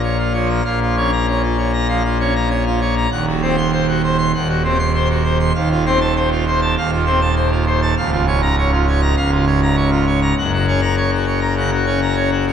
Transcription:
pipe organ
Already playing: A#1 A#2
0.03 C#5
0.18 F4
0.34 F3 C#5
0.49 A#5
0.65 A#1 A#2 F5
0.82 F4
0.97 C#4 C#5
1.12 A#5
1.28 C#5
1.43 F4
1.58 C#5
1.73 A#5
1.88 F3 F5
2.04 F4
2.20 C#4 C#5
2.35 A#5
2.50 C#5
2.67 F4
2.81 C#5
2.97 A#5
3.12 D#1 D#2 F#5
3.27 F#4
3.42 C4 C5
3.57 C6
3.73 C5
3.88 F#4
4.03 C5
4.18 C6
4.35 D#1 D#2 F#5
4.49 F#4
4.64 C4 C5
4.79 C6
4.95 C5
5.10 F#4
5.24 C5
5.40 C6
5.54 D#1 D#2 F5
5.71 F4
5.85 C4 C5
6.01 A5
6.16 C5
6.32 F4
6.47 C5
6.62 A5
6.78 D#1 D#2 F5
6.92 F4
7.06 C4 C5
7.21 A5
7.36 C5
7.52 F4
7.67 C5
7.82 A5
7.97 C#1 C#2 F5
8.12 F4
8.27 C#4 C#5
8.42 A#5
8.58 C#5
8.73 F4
8.88 C#5
9.01 A#5
9.17 C#1 C#2 F5
9.31 F4
9.46 C#4 C#5
9.62 A#5
9.77 C#5
9.92 F4
10.06 C#5
10.22 A#5
10.38 F#1 F#2 F#5
10.53 F#4
10.67 C#4 C#5
10.82 A#5
10.97 C#5
11.12 F#4
11.26 C#5
11.40 A#5
11.56 C#3 F#5
11.72 F#4
11.86 C#4 C#5
12.02 A#5
12.16 C#5
12.32 F#4
12.47 C#5

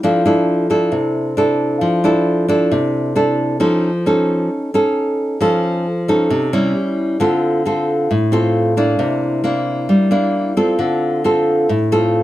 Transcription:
nylon-string guitar
0.03 F3 D4 E4 A4
0.26 D4 E4 A4
0.70 D4 E4 A4
0.92 C3
1.37 D4 E4 A4
1.81 F3
2.04 D4 E4 A4
2.48 D4 E4 A4
2.72 C3
3.16 D4 E4 A4
3.60 F3 C#4 D#4 A4
4.06 C#4 D#4 A4
4.74 C#4 D#4 A4
5.41 F3 C#4 D#4 A4
6.08 C#4 D#4 A4
6.30 C3
6.53 G3 C#4 E4
7.20 D3 C4 F4 A4
7.66 C4 F4 A4
8.11 A2
8.32 C4 F4 A4
8.77 A#3 D4 E4
8.99 C3
9.44 A#3 D4 E4
9.89 G3
10.11 A#3 D4 E4
10.57 C4 F4 A4
10.79 D3
11.24 C4 F4 A4
11.69 A2
11.92 C4 F4 A4

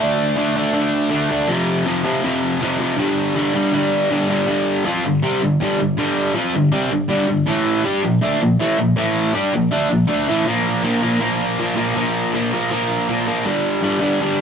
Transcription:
distorted electric guitar
0.00 D3 A3 D4
0.36 D3 A3 D4
0.56 D3 A3 D4
0.73 D3 A3 D4
1.10 D3 A3 D4
1.30 D3 A3 D4
1.47 F2 C3 F3
1.86 F2 C3 F3
2.05 F2 C3 F3
2.24 F2 C3 F3
2.61 F2 C3 F3
2.80 F2 C3 F3
2.98 G2 D3 G3
3.35 G2 D3 G3
3.54 G2 D3 G3
3.73 G2 D3 G3
4.10 G2 D3 G3
4.29 G2 D3 G3
4.47 G2 D3 G3
4.85 F3 C4 F4
5.05 G2 D3
5.22 C3 G3 C4
5.42 G2 D3
5.60 G2 D3 G3
5.79 G2 D3
5.97 G2 D3 G3
6.35 F3 C4 F4
6.53 G2 D3
6.72 C3 G3 C4
6.91 G2 D3
7.09 G2 D3 G3
7.28 G2 D3
7.46 A2 E3 A3
7.84 G3 D4 G4
8.03 A#2 F3
8.21 D3 A3 D4
8.41 A#2 F3
8.60 A2 E3 A3
8.79 A#2 F3
8.96 A2 E3 A3
9.34 G3 D4 G4
9.54 A#2 F3
9.71 D3 A3 D4
9.90 A#2 F3
10.07 D3 A3 D4
10.28 A2 E3 A3
10.46 A#2 F3 A#3
10.83 A#2 F3 A#3
11.02 A#2 F3 A#3
11.20 A#2 F3 A#3
11.59 A#2 F3 A#3
11.76 A#2 F3 A#3
11.95 A#2 F3 A#3
12.34 A#2 F3 A#3
12.53 A#2 F3 A#3
12.70 A#2 F3 A#3
13.09 A#2 F3 A#3
13.27 A#2 F3 A#3
13.45 G2 D3 G3
13.82 G2 D3 G3
14.00 G2 D3 G3
14.21 G2 D3 G3

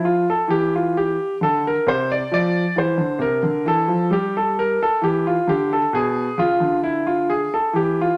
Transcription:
grand piano
Already playing: F3
0.05 F4
0.30 A4
0.48 E3 G4
0.75 F4
0.97 G4
1.41 D3 A4
1.67 A#4
1.87 C3 C5
2.12 D5
2.32 F3 D5
2.76 E3 C5
2.98 D3
3.19 C3 A#4
3.43 D3
3.66 E3 A4
3.88 F3
4.11 G3 G4
4.37 A4
4.59 A#4
4.83 A4
5.02 E3 G4
5.27 F4
5.47 D3 G4
5.73 A4
5.93 B2 G#4
6.38 C#3 F4
6.60 D3
6.84 E4
7.07 F4
7.30 G#4
7.54 A4
7.73 E3 G4
8.01 F4

